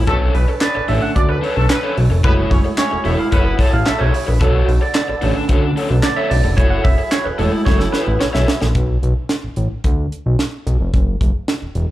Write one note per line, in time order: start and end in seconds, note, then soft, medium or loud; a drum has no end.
0.07 0.30 B1 loud
0.07 2.22 D3 medium
0.07 0.15 A3 loud
0.07 2.22 C#4 medium
0.07 0.32 D4 medium
0.07 2.22 A4 medium
0.07 0.16 A4 loud
0.07 0.33 A4 medium
0.07 0.33 C#5 medium
0.07 kick loud
0.07 closed hi-hat medium
0.34 0.46 B1 loud
0.34 0.43 B3 medium
0.34 0.43 B4 medium
0.34 0.62 B4 medium
0.34 open hi-hat medium
0.48 muted overdriven electric guitar stroke soft
0.61 0.83 B3 medium
0.61 0.83 B4 loud
0.61 0.90 D5 loud
0.61 snare loud
0.61 clap medium
0.61 closed hi-hat loud
0.75 0.81 A1 soft
0.75 muted overdriven electric guitar stroke soft
0.88 1.00 A1 medium
0.88 1.25 D3 medium
0.88 1.25 A3 medium
0.88 1.25 C#4 medium
0.88 1.09 D4 medium
0.88 1.02 A4 medium
0.88 1.01 C#5 medium
0.88 1.03 E5 medium
0.88 open hi-hat medium
1.02 1.15 F#5 loud
1.02 muted overdriven electric guitar stroke medium
1.15 1.39 D2 medium
1.15 1.26 D4 medium
1.15 1.26 D5 loud
1.15 1.22 D5 loud
1.15 kick medium
1.15 closed hi-hat loud
1.29 1.38 B3 medium
1.29 1.80 B4 medium
1.29 1.38 B4 medium
1.29 muted overdriven electric guitar stroke soft
1.42 1.63 D4 medium
1.42 1.56 A4 medium
1.42 1.55 C#5 medium
1.42 open hi-hat medium
1.56 1.68 B1 medium
1.56 1.67 A3 loud
1.56 1.67 A4 loud
1.56 muted overdriven electric guitar stroke medium
1.69 1.92 B3 loud
1.69 1.91 B4 loud
1.69 muted overdriven electric guitar stroke soft
1.69 snare loud
1.69 clap loud
1.69 clap medium
1.69 closed hi-hat medium
1.83 1.96 D4 medium
1.83 1.96 A4 medium
1.83 1.97 C#5 medium
1.97 2.09 B1 medium
1.97 muted overdriven electric guitar stroke soft
1.97 open hi-hat medium
2.10 2.22 F1 medium
2.10 muted overdriven electric guitar stroke medium
2.23 2.47 F#1 loud
2.23 4.39 F#3 medium
2.23 3.04 G#3 medium
2.23 3.04 A3 soft
2.23 2.33 B3 loud
2.23 2.49 E4 medium
2.23 4.39 E4 medium
2.23 3.04 E4 medium
2.23 4.39 G#4 medium
2.23 2.50 A4 medium
2.23 2.33 B4 loud
2.23 2.50 C#5 medium
2.23 kick loud
2.23 closed hi-hat medium
2.51 2.63 F#1 loud
2.51 2.59 C#4 medium
2.51 2.59 C#5 medium
2.51 kick medium
2.51 open hi-hat medium
2.64 muted overdriven electric guitar stroke soft
2.78 3.00 C#4 loud
2.78 3.00 C#5 loud
2.78 3.07 C#5 medium
2.78 snare loud
2.78 clap loud
2.78 clap medium
2.78 closed hi-hat loud
2.91 2.98 E1 soft
2.91 muted overdriven electric guitar stroke soft
3.04 3.17 E1 loud
3.04 3.30 G#3 medium
3.04 3.30 A3 soft
3.04 3.26 E4 medium
3.04 3.30 E4 medium
3.04 3.18 A4 medium
3.04 3.17 C#5 loud
3.04 3.18 E5 medium
3.04 open hi-hat medium
3.18 3.33 F5 medium
3.18 muted overdriven electric guitar stroke soft
3.31 3.55 F#1 medium
3.31 3.54 B3 medium
3.31 3.53 E4 medium
3.31 3.45 A4 medium
3.31 3.54 B4 loud
3.31 3.43 C#5 medium
3.31 3.61 F#5 loud
3.31 kick medium
3.31 closed hi-hat loud
3.45 muted overdriven electric guitar stroke soft
3.58 3.75 E4 medium
3.58 3.72 A4 medium
3.58 3.71 C#5 medium
3.58 3.74 A5 loud
3.58 kick medium
3.58 open hi-hat medium
3.72 3.85 A1 medium
3.72 3.87 F5 medium
3.72 muted overdriven electric guitar stroke soft
3.85 3.93 B1 medium
3.85 4.08 A3 loud
3.85 4.08 A4 loud
3.85 4.01 E5 loud
3.85 muted overdriven electric guitar stroke medium
3.85 snare loud
3.85 clap medium
3.85 closed hi-hat medium
3.99 4.12 B1 medium
3.99 4.12 E4 medium
3.99 4.13 A4 medium
3.99 4.13 C#5 medium
3.99 4.29 C#5 loud
4.13 muted overdriven electric guitar stroke soft
4.13 open hi-hat loud
4.27 4.39 A#1 medium
4.27 4.42 B4 medium
4.27 muted overdriven electric guitar stroke soft
4.40 4.63 B1 loud
4.40 6.56 D3 medium
4.40 6.56 B3 medium
4.40 4.66 D4 medium
4.40 4.66 A4 medium
4.40 4.55 A4 medium
4.40 6.56 A4 medium
4.40 4.66 C#5 medium
4.40 kick loud
4.40 closed hi-hat medium
4.55 4.80 F#4 medium
4.68 4.80 B1 loud
4.68 open hi-hat medium
4.81 5.32 D5 medium
4.81 muted overdriven electric guitar stroke soft
4.95 snare loud
4.95 clap medium
4.95 closed hi-hat loud
5.08 5.14 A1 soft
5.08 muted overdriven electric guitar stroke soft
5.21 5.34 A1 medium
5.21 6.53 D3 medium
5.21 6.54 A3 medium
5.21 6.54 C#4 medium
5.21 5.43 D4 medium
5.21 5.35 A4 medium
5.21 5.34 C#5 loud
5.21 open hi-hat medium
5.35 muted overdriven electric guitar stroke soft
5.49 5.72 D2 medium
5.49 5.70 D4 medium
5.49 5.63 A4 medium
5.49 5.61 C#5 medium
5.49 kick medium
5.49 closed hi-hat loud
5.63 muted overdriven electric guitar stroke soft
5.76 5.93 D4 medium
5.76 5.90 A4 medium
5.76 5.89 C#5 medium
5.76 open hi-hat medium
5.90 6.01 B1 medium
5.90 muted overdriven electric guitar stroke soft
6.03 6.17 D5 loud
6.03 muted overdriven electric guitar stroke medium
6.03 snare loud
6.03 clap medium
6.03 closed hi-hat medium
6.16 6.29 D4 medium
6.16 6.30 A4 medium
6.16 6.30 C#5 medium
6.16 6.31 E5 loud
6.30 6.42 B1 loud
6.30 6.58 D5 medium
6.30 muted overdriven electric guitar stroke soft
6.30 open hi-hat loud
6.44 6.56 F1 medium
6.44 muted overdriven electric guitar stroke soft
6.57 6.80 F#1 loud
6.57 8.73 F#3 medium
6.57 6.82 E4 medium
6.57 8.73 E4 medium
6.57 8.73 G#4 medium
6.57 6.83 A4 medium
6.57 6.71 C#5 medium
6.57 6.83 C#5 medium
6.57 kick loud
6.57 closed hi-hat medium
6.70 6.85 F#5 medium
6.84 6.96 F#1 loud
6.84 7.12 E5 loud
6.84 kick loud
6.84 open hi-hat medium
6.98 muted overdriven electric guitar stroke soft
7.11 7.26 C#5 loud
7.11 snare loud
7.11 clap medium
7.11 closed hi-hat loud
7.24 7.31 E1 soft
7.24 7.39 B4 medium
7.24 muted overdriven electric guitar stroke soft
7.38 7.50 E1 loud
7.38 7.75 G#3 medium
7.38 7.75 A3 soft
7.38 7.60 E4 medium
7.38 7.76 E4 medium
7.38 7.67 A4 medium
7.38 7.52 A4 medium
7.38 7.51 C#5 medium
7.38 open hi-hat medium
7.52 muted overdriven electric guitar stroke medium
7.65 7.89 F#1 medium
7.65 7.87 E4 medium
7.65 7.79 A4 medium
7.65 7.80 C#5 loud
7.65 7.78 C#5 medium
7.65 kick medium
7.65 snare medium
7.79 7.92 A4 medium
7.79 muted overdriven electric guitar stroke soft
7.79 snare medium
7.93 8.09 E4 medium
7.93 8.06 A4 medium
7.93 8.21 B4 loud
7.93 8.04 C#5 medium
7.93 snare medium
8.06 8.18 A1 medium
8.06 muted overdriven electric guitar stroke medium
8.20 8.26 B1 soft
8.20 8.26 C#5 medium
8.20 muted overdriven electric guitar stroke soft
8.20 snare medium
8.20 clap medium
8.33 8.46 B1 medium
8.33 8.46 E4 medium
8.33 8.47 A4 medium
8.33 8.47 C#5 medium
8.33 8.59 E5 medium
8.33 snare medium
8.47 muted overdriven electric guitar stroke soft
8.47 snare loud
8.61 8.73 A#1 medium
8.61 muted overdriven electric guitar stroke soft
8.61 snare medium
8.75 8.98 B1 loud
8.75 kick loud
8.75 closed hi-hat medium
9.03 9.14 B1 medium
9.03 closed hi-hat medium
9.29 snare loud
9.29 closed hi-hat medium
9.44 9.49 A1 soft
9.56 9.68 A1 medium
9.56 closed hi-hat medium
9.84 10.07 D2 medium
9.84 kick medium
9.84 closed hi-hat medium
10.12 closed hi-hat medium
10.26 10.37 B1 medium
10.39 snare medium
10.39 closed hi-hat medium
10.67 10.78 B1 medium
10.67 closed hi-hat medium
10.80 10.91 F1 medium
10.94 11.16 F#1 medium
10.94 kick loud
10.94 closed hi-hat medium
11.21 11.32 F#1 medium
11.21 kick medium
11.21 closed hi-hat medium
11.48 snare loud
11.48 closed hi-hat medium
11.62 11.67 E1 soft
11.75 11.87 E1 medium
11.75 closed hi-hat medium